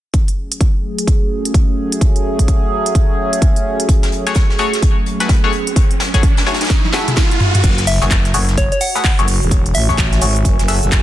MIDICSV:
0, 0, Header, 1, 8, 480
1, 0, Start_track
1, 0, Key_signature, 3, "minor"
1, 0, Tempo, 468750
1, 140, Time_signature, 4, 2, 24, 8
1, 11291, End_track
2, 0, Start_track
2, 0, Title_t, "Synth bell"
2, 0, Program_c, 0, 98
2, 8060, Note_on_c, 0, 76, 84
2, 8259, Note_off_c, 0, 76, 0
2, 8782, Note_on_c, 0, 73, 84
2, 8876, Note_off_c, 0, 73, 0
2, 8929, Note_on_c, 0, 73, 75
2, 8988, Note_off_c, 0, 73, 0
2, 9020, Note_on_c, 0, 78, 86
2, 9115, Note_off_c, 0, 78, 0
2, 9168, Note_on_c, 0, 78, 69
2, 9227, Note_off_c, 0, 78, 0
2, 9979, Note_on_c, 0, 76, 80
2, 10663, Note_off_c, 0, 76, 0
2, 11291, End_track
3, 0, Start_track
3, 0, Title_t, "Ambient pad"
3, 0, Program_c, 1, 92
3, 7821, Note_on_c, 1, 66, 80
3, 7938, Note_on_c, 1, 73, 86
3, 8991, Note_on_c, 1, 80, 86
3, 11291, Note_off_c, 1, 66, 0
3, 11291, Note_off_c, 1, 73, 0
3, 11291, Note_off_c, 1, 80, 0
3, 11291, End_track
4, 0, Start_track
4, 0, Title_t, "Synth stab"
4, 0, Program_c, 2, 62
4, 4368, Note_on_c, 2, 57, 90
4, 4368, Note_on_c, 2, 66, 82
4, 4369, Note_on_c, 2, 68, 85
4, 4369, Note_on_c, 2, 73, 103
4, 4521, Note_off_c, 2, 57, 0
4, 4521, Note_off_c, 2, 66, 0
4, 4521, Note_off_c, 2, 68, 0
4, 4521, Note_off_c, 2, 73, 0
4, 4700, Note_on_c, 2, 57, 90
4, 4700, Note_on_c, 2, 66, 78
4, 4700, Note_on_c, 2, 68, 85
4, 4700, Note_on_c, 2, 73, 104
4, 4831, Note_off_c, 2, 57, 0
4, 4831, Note_off_c, 2, 66, 0
4, 4831, Note_off_c, 2, 68, 0
4, 4831, Note_off_c, 2, 73, 0
4, 5328, Note_on_c, 2, 57, 76
4, 5328, Note_on_c, 2, 66, 69
4, 5328, Note_on_c, 2, 71, 83
4, 5329, Note_on_c, 2, 68, 70
4, 5481, Note_off_c, 2, 57, 0
4, 5481, Note_off_c, 2, 66, 0
4, 5481, Note_off_c, 2, 68, 0
4, 5481, Note_off_c, 2, 71, 0
4, 5569, Note_on_c, 2, 57, 94
4, 5569, Note_on_c, 2, 66, 82
4, 5569, Note_on_c, 2, 68, 86
4, 5569, Note_on_c, 2, 73, 102
4, 5650, Note_off_c, 2, 57, 0
4, 5650, Note_off_c, 2, 66, 0
4, 5650, Note_off_c, 2, 68, 0
4, 5650, Note_off_c, 2, 73, 0
4, 6288, Note_on_c, 2, 57, 94
4, 6288, Note_on_c, 2, 66, 84
4, 6288, Note_on_c, 2, 73, 99
4, 6289, Note_on_c, 2, 68, 83
4, 6369, Note_off_c, 2, 57, 0
4, 6369, Note_off_c, 2, 66, 0
4, 6369, Note_off_c, 2, 73, 0
4, 6370, Note_off_c, 2, 68, 0
4, 6620, Note_on_c, 2, 57, 70
4, 6620, Note_on_c, 2, 66, 66
4, 6620, Note_on_c, 2, 68, 66
4, 6620, Note_on_c, 2, 73, 84
4, 6806, Note_off_c, 2, 57, 0
4, 6806, Note_off_c, 2, 66, 0
4, 6806, Note_off_c, 2, 68, 0
4, 6806, Note_off_c, 2, 73, 0
4, 7100, Note_on_c, 2, 57, 97
4, 7100, Note_on_c, 2, 66, 91
4, 7100, Note_on_c, 2, 68, 89
4, 7100, Note_on_c, 2, 76, 107
4, 7809, Note_off_c, 2, 57, 0
4, 7809, Note_off_c, 2, 66, 0
4, 7809, Note_off_c, 2, 68, 0
4, 7809, Note_off_c, 2, 76, 0
4, 8208, Note_on_c, 2, 66, 86
4, 8209, Note_on_c, 2, 57, 89
4, 8209, Note_on_c, 2, 68, 84
4, 8209, Note_on_c, 2, 73, 103
4, 8361, Note_off_c, 2, 57, 0
4, 8361, Note_off_c, 2, 66, 0
4, 8361, Note_off_c, 2, 68, 0
4, 8361, Note_off_c, 2, 73, 0
4, 8541, Note_on_c, 2, 57, 90
4, 8541, Note_on_c, 2, 66, 83
4, 8541, Note_on_c, 2, 68, 83
4, 8541, Note_on_c, 2, 73, 96
4, 8671, Note_off_c, 2, 57, 0
4, 8671, Note_off_c, 2, 66, 0
4, 8671, Note_off_c, 2, 68, 0
4, 8671, Note_off_c, 2, 73, 0
4, 9169, Note_on_c, 2, 57, 75
4, 9169, Note_on_c, 2, 66, 69
4, 9169, Note_on_c, 2, 68, 67
4, 9169, Note_on_c, 2, 71, 83
4, 9321, Note_off_c, 2, 57, 0
4, 9321, Note_off_c, 2, 66, 0
4, 9321, Note_off_c, 2, 68, 0
4, 9321, Note_off_c, 2, 71, 0
4, 9409, Note_on_c, 2, 57, 93
4, 9409, Note_on_c, 2, 66, 88
4, 9409, Note_on_c, 2, 68, 88
4, 9409, Note_on_c, 2, 73, 103
4, 9490, Note_off_c, 2, 57, 0
4, 9490, Note_off_c, 2, 66, 0
4, 9490, Note_off_c, 2, 68, 0
4, 9490, Note_off_c, 2, 73, 0
4, 10128, Note_on_c, 2, 57, 90
4, 10128, Note_on_c, 2, 66, 81
4, 10128, Note_on_c, 2, 68, 89
4, 10128, Note_on_c, 2, 73, 105
4, 10209, Note_off_c, 2, 57, 0
4, 10209, Note_off_c, 2, 66, 0
4, 10209, Note_off_c, 2, 68, 0
4, 10209, Note_off_c, 2, 73, 0
4, 10460, Note_on_c, 2, 57, 77
4, 10460, Note_on_c, 2, 66, 68
4, 10460, Note_on_c, 2, 68, 67
4, 10461, Note_on_c, 2, 73, 82
4, 10646, Note_off_c, 2, 57, 0
4, 10646, Note_off_c, 2, 66, 0
4, 10646, Note_off_c, 2, 68, 0
4, 10646, Note_off_c, 2, 73, 0
4, 10939, Note_on_c, 2, 57, 98
4, 10939, Note_on_c, 2, 66, 86
4, 10939, Note_on_c, 2, 68, 90
4, 10939, Note_on_c, 2, 76, 109
4, 11291, Note_off_c, 2, 57, 0
4, 11291, Note_off_c, 2, 66, 0
4, 11291, Note_off_c, 2, 68, 0
4, 11291, Note_off_c, 2, 76, 0
4, 11291, End_track
5, 0, Start_track
5, 0, Title_t, "Analog synth pad"
5, 0, Program_c, 3, 89
5, 141, Note_on_c, 3, 68, 85
5, 142, Note_on_c, 3, 54, 73
5, 142, Note_on_c, 3, 57, 70
5, 142, Note_on_c, 3, 61, 72
5, 7780, Note_off_c, 3, 54, 0
5, 7780, Note_off_c, 3, 57, 0
5, 7780, Note_off_c, 3, 61, 0
5, 7780, Note_off_c, 3, 68, 0
5, 11291, End_track
6, 0, Start_track
6, 0, Title_t, "FM bass"
6, 0, Program_c, 4, 39
6, 7821, Note_on_c, 4, 30, 102
6, 8185, Note_off_c, 4, 30, 0
6, 8210, Note_on_c, 4, 30, 96
6, 8526, Note_off_c, 4, 30, 0
6, 8540, Note_on_c, 4, 30, 96
6, 8905, Note_off_c, 4, 30, 0
6, 9408, Note_on_c, 4, 30, 90
6, 9624, Note_off_c, 4, 30, 0
6, 9648, Note_on_c, 4, 28, 94
6, 9966, Note_off_c, 4, 28, 0
6, 9979, Note_on_c, 4, 33, 94
6, 10445, Note_off_c, 4, 33, 0
6, 10460, Note_on_c, 4, 32, 97
6, 10685, Note_off_c, 4, 32, 0
6, 10700, Note_on_c, 4, 30, 93
6, 10824, Note_off_c, 4, 30, 0
6, 10848, Note_on_c, 4, 30, 97
6, 11065, Note_off_c, 4, 30, 0
6, 11088, Note_on_c, 4, 30, 94
6, 11291, Note_off_c, 4, 30, 0
6, 11291, End_track
7, 0, Start_track
7, 0, Title_t, "Riser"
7, 0, Program_c, 5, 103
7, 3980, Note_on_c, 5, 60, 73
7, 7820, Note_off_c, 5, 60, 0
7, 11291, End_track
8, 0, Start_track
8, 0, Title_t, "Drums"
8, 140, Note_on_c, 9, 36, 101
8, 140, Note_on_c, 9, 42, 65
8, 243, Note_off_c, 9, 36, 0
8, 243, Note_off_c, 9, 42, 0
8, 288, Note_on_c, 9, 42, 36
8, 391, Note_off_c, 9, 42, 0
8, 529, Note_on_c, 9, 42, 51
8, 620, Note_on_c, 9, 36, 110
8, 621, Note_off_c, 9, 42, 0
8, 621, Note_on_c, 9, 42, 62
8, 723, Note_off_c, 9, 36, 0
8, 724, Note_off_c, 9, 42, 0
8, 1009, Note_on_c, 9, 42, 48
8, 1100, Note_on_c, 9, 36, 107
8, 1102, Note_off_c, 9, 42, 0
8, 1102, Note_on_c, 9, 42, 62
8, 1203, Note_off_c, 9, 36, 0
8, 1204, Note_off_c, 9, 42, 0
8, 1489, Note_on_c, 9, 42, 51
8, 1581, Note_on_c, 9, 36, 111
8, 1582, Note_off_c, 9, 42, 0
8, 1582, Note_on_c, 9, 42, 60
8, 1683, Note_off_c, 9, 36, 0
8, 1685, Note_off_c, 9, 42, 0
8, 1970, Note_on_c, 9, 42, 51
8, 2061, Note_on_c, 9, 36, 113
8, 2062, Note_off_c, 9, 42, 0
8, 2062, Note_on_c, 9, 42, 63
8, 2163, Note_off_c, 9, 36, 0
8, 2164, Note_off_c, 9, 42, 0
8, 2210, Note_on_c, 9, 42, 35
8, 2312, Note_off_c, 9, 42, 0
8, 2449, Note_on_c, 9, 36, 56
8, 2450, Note_on_c, 9, 42, 51
8, 2541, Note_off_c, 9, 36, 0
8, 2541, Note_off_c, 9, 42, 0
8, 2541, Note_on_c, 9, 36, 114
8, 2541, Note_on_c, 9, 42, 63
8, 2643, Note_off_c, 9, 36, 0
8, 2644, Note_off_c, 9, 42, 0
8, 2930, Note_on_c, 9, 42, 47
8, 3021, Note_on_c, 9, 36, 106
8, 3022, Note_off_c, 9, 42, 0
8, 3022, Note_on_c, 9, 42, 60
8, 3123, Note_off_c, 9, 36, 0
8, 3124, Note_off_c, 9, 42, 0
8, 3410, Note_on_c, 9, 42, 52
8, 3501, Note_off_c, 9, 42, 0
8, 3501, Note_on_c, 9, 36, 114
8, 3501, Note_on_c, 9, 42, 59
8, 3603, Note_off_c, 9, 36, 0
8, 3604, Note_off_c, 9, 42, 0
8, 3649, Note_on_c, 9, 42, 34
8, 3751, Note_off_c, 9, 42, 0
8, 3889, Note_on_c, 9, 42, 50
8, 3980, Note_on_c, 9, 36, 116
8, 3981, Note_off_c, 9, 42, 0
8, 3981, Note_on_c, 9, 42, 60
8, 4083, Note_off_c, 9, 36, 0
8, 4084, Note_off_c, 9, 42, 0
8, 4126, Note_on_c, 9, 38, 50
8, 4129, Note_on_c, 9, 42, 33
8, 4216, Note_off_c, 9, 42, 0
8, 4216, Note_on_c, 9, 42, 68
8, 4229, Note_off_c, 9, 38, 0
8, 4318, Note_off_c, 9, 42, 0
8, 4369, Note_on_c, 9, 42, 48
8, 4371, Note_on_c, 9, 38, 50
8, 4449, Note_off_c, 9, 42, 0
8, 4449, Note_on_c, 9, 42, 78
8, 4459, Note_off_c, 9, 38, 0
8, 4459, Note_on_c, 9, 38, 106
8, 4460, Note_on_c, 9, 36, 123
8, 4462, Note_off_c, 9, 42, 0
8, 4462, Note_on_c, 9, 42, 63
8, 4562, Note_off_c, 9, 38, 0
8, 4563, Note_off_c, 9, 36, 0
8, 4564, Note_off_c, 9, 42, 0
8, 4609, Note_on_c, 9, 38, 53
8, 4694, Note_on_c, 9, 42, 65
8, 4711, Note_off_c, 9, 38, 0
8, 4797, Note_off_c, 9, 42, 0
8, 4849, Note_on_c, 9, 42, 47
8, 4852, Note_on_c, 9, 38, 44
8, 4940, Note_on_c, 9, 36, 114
8, 4941, Note_off_c, 9, 42, 0
8, 4941, Note_on_c, 9, 42, 60
8, 4943, Note_off_c, 9, 42, 0
8, 4943, Note_on_c, 9, 42, 79
8, 4954, Note_off_c, 9, 38, 0
8, 5043, Note_off_c, 9, 36, 0
8, 5045, Note_off_c, 9, 42, 0
8, 5183, Note_on_c, 9, 42, 56
8, 5286, Note_off_c, 9, 42, 0
8, 5325, Note_on_c, 9, 38, 44
8, 5328, Note_on_c, 9, 42, 49
8, 5416, Note_off_c, 9, 38, 0
8, 5416, Note_on_c, 9, 38, 104
8, 5420, Note_off_c, 9, 42, 0
8, 5420, Note_on_c, 9, 36, 117
8, 5420, Note_on_c, 9, 42, 56
8, 5436, Note_off_c, 9, 42, 0
8, 5436, Note_on_c, 9, 42, 86
8, 5519, Note_off_c, 9, 38, 0
8, 5523, Note_off_c, 9, 36, 0
8, 5538, Note_off_c, 9, 42, 0
8, 5655, Note_on_c, 9, 42, 58
8, 5758, Note_off_c, 9, 42, 0
8, 5808, Note_on_c, 9, 42, 47
8, 5900, Note_off_c, 9, 42, 0
8, 5900, Note_on_c, 9, 36, 112
8, 5900, Note_on_c, 9, 42, 62
8, 5903, Note_off_c, 9, 42, 0
8, 5903, Note_on_c, 9, 42, 82
8, 6002, Note_off_c, 9, 36, 0
8, 6006, Note_off_c, 9, 42, 0
8, 6049, Note_on_c, 9, 42, 33
8, 6142, Note_on_c, 9, 38, 108
8, 6144, Note_off_c, 9, 42, 0
8, 6144, Note_on_c, 9, 42, 80
8, 6245, Note_off_c, 9, 38, 0
8, 6247, Note_off_c, 9, 42, 0
8, 6288, Note_on_c, 9, 36, 58
8, 6288, Note_on_c, 9, 42, 47
8, 6296, Note_on_c, 9, 38, 44
8, 6380, Note_off_c, 9, 36, 0
8, 6380, Note_off_c, 9, 42, 0
8, 6380, Note_on_c, 9, 36, 121
8, 6380, Note_on_c, 9, 42, 57
8, 6382, Note_off_c, 9, 42, 0
8, 6382, Note_on_c, 9, 42, 60
8, 6399, Note_off_c, 9, 38, 0
8, 6482, Note_off_c, 9, 36, 0
8, 6485, Note_off_c, 9, 42, 0
8, 6525, Note_on_c, 9, 42, 75
8, 6531, Note_on_c, 9, 38, 103
8, 6617, Note_off_c, 9, 38, 0
8, 6617, Note_on_c, 9, 38, 84
8, 6620, Note_off_c, 9, 42, 0
8, 6620, Note_on_c, 9, 42, 66
8, 6697, Note_off_c, 9, 42, 0
8, 6697, Note_on_c, 9, 42, 62
8, 6700, Note_off_c, 9, 38, 0
8, 6700, Note_on_c, 9, 38, 77
8, 6767, Note_off_c, 9, 42, 0
8, 6767, Note_on_c, 9, 42, 58
8, 6769, Note_off_c, 9, 42, 0
8, 6769, Note_on_c, 9, 42, 45
8, 6772, Note_off_c, 9, 38, 0
8, 6772, Note_on_c, 9, 38, 77
8, 6804, Note_off_c, 9, 42, 0
8, 6804, Note_on_c, 9, 42, 57
8, 6823, Note_off_c, 9, 38, 0
8, 6823, Note_on_c, 9, 38, 71
8, 6857, Note_off_c, 9, 42, 0
8, 6857, Note_on_c, 9, 42, 80
8, 6860, Note_off_c, 9, 38, 0
8, 6860, Note_off_c, 9, 42, 0
8, 6860, Note_on_c, 9, 36, 110
8, 6860, Note_on_c, 9, 38, 57
8, 6860, Note_on_c, 9, 42, 59
8, 6963, Note_off_c, 9, 36, 0
8, 6963, Note_off_c, 9, 38, 0
8, 6963, Note_off_c, 9, 42, 0
8, 7006, Note_on_c, 9, 38, 47
8, 7008, Note_on_c, 9, 48, 59
8, 7090, Note_off_c, 9, 38, 0
8, 7090, Note_on_c, 9, 38, 95
8, 7101, Note_off_c, 9, 38, 0
8, 7101, Note_on_c, 9, 38, 73
8, 7105, Note_on_c, 9, 42, 70
8, 7110, Note_off_c, 9, 48, 0
8, 7203, Note_off_c, 9, 38, 0
8, 7207, Note_off_c, 9, 42, 0
8, 7246, Note_on_c, 9, 38, 49
8, 7249, Note_on_c, 9, 42, 48
8, 7249, Note_on_c, 9, 47, 66
8, 7339, Note_off_c, 9, 38, 0
8, 7339, Note_off_c, 9, 42, 0
8, 7339, Note_on_c, 9, 38, 99
8, 7339, Note_on_c, 9, 42, 80
8, 7340, Note_on_c, 9, 36, 116
8, 7341, Note_off_c, 9, 38, 0
8, 7341, Note_off_c, 9, 42, 0
8, 7341, Note_on_c, 9, 38, 76
8, 7341, Note_on_c, 9, 42, 58
8, 7351, Note_off_c, 9, 47, 0
8, 7443, Note_off_c, 9, 36, 0
8, 7443, Note_off_c, 9, 38, 0
8, 7443, Note_off_c, 9, 42, 0
8, 7489, Note_on_c, 9, 42, 33
8, 7577, Note_off_c, 9, 42, 0
8, 7577, Note_on_c, 9, 42, 66
8, 7580, Note_on_c, 9, 45, 93
8, 7680, Note_off_c, 9, 42, 0
8, 7683, Note_off_c, 9, 45, 0
8, 7729, Note_on_c, 9, 42, 50
8, 7729, Note_on_c, 9, 45, 87
8, 7815, Note_off_c, 9, 42, 0
8, 7815, Note_on_c, 9, 42, 81
8, 7820, Note_on_c, 9, 36, 117
8, 7821, Note_off_c, 9, 42, 0
8, 7821, Note_on_c, 9, 42, 78
8, 7821, Note_on_c, 9, 49, 99
8, 7823, Note_on_c, 9, 82, 46
8, 7831, Note_off_c, 9, 45, 0
8, 7923, Note_off_c, 9, 36, 0
8, 7923, Note_off_c, 9, 42, 0
8, 7923, Note_off_c, 9, 49, 0
8, 7925, Note_off_c, 9, 82, 0
8, 7968, Note_on_c, 9, 38, 47
8, 7969, Note_on_c, 9, 42, 54
8, 7971, Note_on_c, 9, 82, 21
8, 8060, Note_off_c, 9, 42, 0
8, 8060, Note_on_c, 9, 42, 64
8, 8061, Note_on_c, 9, 46, 100
8, 8063, Note_off_c, 9, 82, 0
8, 8063, Note_on_c, 9, 82, 75
8, 8070, Note_off_c, 9, 38, 0
8, 8162, Note_off_c, 9, 42, 0
8, 8163, Note_off_c, 9, 46, 0
8, 8165, Note_off_c, 9, 82, 0
8, 8211, Note_on_c, 9, 38, 53
8, 8211, Note_on_c, 9, 82, 33
8, 8300, Note_on_c, 9, 36, 122
8, 8300, Note_on_c, 9, 42, 86
8, 8301, Note_off_c, 9, 42, 0
8, 8301, Note_on_c, 9, 42, 79
8, 8302, Note_off_c, 9, 38, 0
8, 8302, Note_on_c, 9, 38, 118
8, 8303, Note_off_c, 9, 82, 0
8, 8303, Note_on_c, 9, 82, 44
8, 8305, Note_on_c, 9, 39, 123
8, 8403, Note_off_c, 9, 36, 0
8, 8404, Note_off_c, 9, 42, 0
8, 8405, Note_off_c, 9, 38, 0
8, 8405, Note_off_c, 9, 82, 0
8, 8408, Note_off_c, 9, 39, 0
8, 8444, Note_on_c, 9, 38, 47
8, 8450, Note_on_c, 9, 42, 52
8, 8451, Note_on_c, 9, 82, 21
8, 8541, Note_off_c, 9, 42, 0
8, 8541, Note_on_c, 9, 42, 62
8, 8541, Note_on_c, 9, 46, 102
8, 8543, Note_off_c, 9, 82, 0
8, 8543, Note_on_c, 9, 82, 80
8, 8546, Note_off_c, 9, 38, 0
8, 8644, Note_off_c, 9, 42, 0
8, 8644, Note_off_c, 9, 46, 0
8, 8645, Note_off_c, 9, 82, 0
8, 8687, Note_on_c, 9, 38, 51
8, 8689, Note_on_c, 9, 42, 36
8, 8691, Note_on_c, 9, 82, 31
8, 8779, Note_off_c, 9, 42, 0
8, 8779, Note_on_c, 9, 42, 96
8, 8780, Note_on_c, 9, 36, 109
8, 8781, Note_off_c, 9, 42, 0
8, 8781, Note_on_c, 9, 42, 78
8, 8783, Note_off_c, 9, 82, 0
8, 8783, Note_on_c, 9, 82, 42
8, 8789, Note_off_c, 9, 38, 0
8, 8883, Note_off_c, 9, 36, 0
8, 8884, Note_off_c, 9, 42, 0
8, 8885, Note_off_c, 9, 82, 0
8, 8929, Note_on_c, 9, 42, 59
8, 8931, Note_on_c, 9, 82, 23
8, 9016, Note_off_c, 9, 42, 0
8, 9016, Note_on_c, 9, 42, 60
8, 9020, Note_on_c, 9, 46, 105
8, 9022, Note_off_c, 9, 82, 0
8, 9022, Note_on_c, 9, 82, 80
8, 9119, Note_off_c, 9, 42, 0
8, 9123, Note_off_c, 9, 46, 0
8, 9125, Note_off_c, 9, 82, 0
8, 9168, Note_on_c, 9, 38, 43
8, 9171, Note_on_c, 9, 82, 33
8, 9260, Note_on_c, 9, 36, 120
8, 9261, Note_on_c, 9, 46, 57
8, 9263, Note_off_c, 9, 82, 0
8, 9263, Note_on_c, 9, 82, 41
8, 9264, Note_on_c, 9, 42, 85
8, 9265, Note_off_c, 9, 38, 0
8, 9265, Note_on_c, 9, 38, 113
8, 9265, Note_on_c, 9, 39, 119
8, 9363, Note_off_c, 9, 36, 0
8, 9364, Note_off_c, 9, 46, 0
8, 9366, Note_off_c, 9, 82, 0
8, 9367, Note_off_c, 9, 42, 0
8, 9368, Note_off_c, 9, 38, 0
8, 9368, Note_off_c, 9, 39, 0
8, 9410, Note_on_c, 9, 42, 53
8, 9411, Note_on_c, 9, 82, 21
8, 9501, Note_off_c, 9, 42, 0
8, 9501, Note_on_c, 9, 42, 62
8, 9502, Note_on_c, 9, 46, 93
8, 9503, Note_off_c, 9, 82, 0
8, 9503, Note_on_c, 9, 82, 71
8, 9604, Note_off_c, 9, 42, 0
8, 9604, Note_off_c, 9, 46, 0
8, 9606, Note_off_c, 9, 82, 0
8, 9652, Note_on_c, 9, 82, 33
8, 9740, Note_on_c, 9, 36, 124
8, 9742, Note_on_c, 9, 42, 85
8, 9744, Note_off_c, 9, 82, 0
8, 9744, Note_on_c, 9, 82, 43
8, 9842, Note_off_c, 9, 36, 0
8, 9845, Note_off_c, 9, 42, 0
8, 9846, Note_off_c, 9, 82, 0
8, 9890, Note_on_c, 9, 42, 55
8, 9892, Note_on_c, 9, 82, 21
8, 9970, Note_off_c, 9, 42, 0
8, 9970, Note_on_c, 9, 42, 70
8, 9982, Note_on_c, 9, 46, 107
8, 9984, Note_off_c, 9, 82, 0
8, 9984, Note_on_c, 9, 82, 73
8, 10073, Note_off_c, 9, 42, 0
8, 10084, Note_off_c, 9, 46, 0
8, 10086, Note_off_c, 9, 82, 0
8, 10124, Note_on_c, 9, 38, 35
8, 10128, Note_on_c, 9, 36, 59
8, 10132, Note_on_c, 9, 82, 32
8, 10217, Note_on_c, 9, 42, 91
8, 10219, Note_off_c, 9, 38, 0
8, 10219, Note_on_c, 9, 38, 117
8, 10220, Note_off_c, 9, 36, 0
8, 10220, Note_on_c, 9, 36, 124
8, 10221, Note_off_c, 9, 42, 0
8, 10221, Note_on_c, 9, 42, 82
8, 10223, Note_off_c, 9, 82, 0
8, 10223, Note_on_c, 9, 82, 41
8, 10225, Note_on_c, 9, 39, 121
8, 10322, Note_off_c, 9, 36, 0
8, 10322, Note_off_c, 9, 38, 0
8, 10324, Note_off_c, 9, 42, 0
8, 10326, Note_off_c, 9, 82, 0
8, 10328, Note_off_c, 9, 39, 0
8, 10369, Note_on_c, 9, 42, 50
8, 10371, Note_on_c, 9, 38, 56
8, 10371, Note_on_c, 9, 82, 20
8, 10456, Note_off_c, 9, 42, 0
8, 10456, Note_on_c, 9, 42, 62
8, 10462, Note_on_c, 9, 46, 113
8, 10463, Note_off_c, 9, 82, 0
8, 10463, Note_on_c, 9, 82, 79
8, 10473, Note_off_c, 9, 38, 0
8, 10558, Note_off_c, 9, 42, 0
8, 10564, Note_off_c, 9, 46, 0
8, 10566, Note_off_c, 9, 82, 0
8, 10610, Note_on_c, 9, 42, 35
8, 10611, Note_on_c, 9, 82, 30
8, 10700, Note_on_c, 9, 36, 114
8, 10701, Note_off_c, 9, 42, 0
8, 10701, Note_on_c, 9, 42, 76
8, 10703, Note_off_c, 9, 82, 0
8, 10703, Note_on_c, 9, 82, 41
8, 10704, Note_off_c, 9, 42, 0
8, 10704, Note_on_c, 9, 42, 84
8, 10802, Note_off_c, 9, 36, 0
8, 10805, Note_off_c, 9, 82, 0
8, 10806, Note_off_c, 9, 42, 0
8, 10846, Note_on_c, 9, 38, 48
8, 10849, Note_on_c, 9, 42, 54
8, 10850, Note_on_c, 9, 82, 22
8, 10941, Note_on_c, 9, 46, 105
8, 10943, Note_off_c, 9, 38, 0
8, 10943, Note_off_c, 9, 42, 0
8, 10943, Note_off_c, 9, 82, 0
8, 10943, Note_on_c, 9, 38, 41
8, 10943, Note_on_c, 9, 42, 64
8, 10943, Note_on_c, 9, 82, 74
8, 11043, Note_off_c, 9, 46, 0
8, 11045, Note_off_c, 9, 38, 0
8, 11045, Note_off_c, 9, 42, 0
8, 11045, Note_off_c, 9, 82, 0
8, 11088, Note_on_c, 9, 42, 34
8, 11090, Note_on_c, 9, 82, 31
8, 11179, Note_off_c, 9, 42, 0
8, 11179, Note_on_c, 9, 42, 92
8, 11180, Note_off_c, 9, 42, 0
8, 11180, Note_on_c, 9, 36, 121
8, 11180, Note_on_c, 9, 42, 80
8, 11182, Note_off_c, 9, 82, 0
8, 11182, Note_on_c, 9, 82, 43
8, 11184, Note_on_c, 9, 39, 115
8, 11185, Note_on_c, 9, 38, 106
8, 11282, Note_off_c, 9, 36, 0
8, 11282, Note_off_c, 9, 42, 0
8, 11284, Note_off_c, 9, 82, 0
8, 11286, Note_off_c, 9, 39, 0
8, 11287, Note_off_c, 9, 38, 0
8, 11291, End_track
0, 0, End_of_file